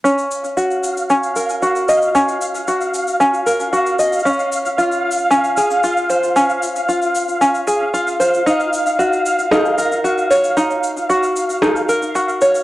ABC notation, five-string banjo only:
X:1
M:4/4
L:1/8
Q:1/4=114
K:Ebdor
V:1 name="Five-string banjo"
D2 G2 D B G e | D2 G2 D B G e | D2 F2 D A F c | D2 F2 D A F c |
E2 G2 E B G d | E2 G2 E B G d |]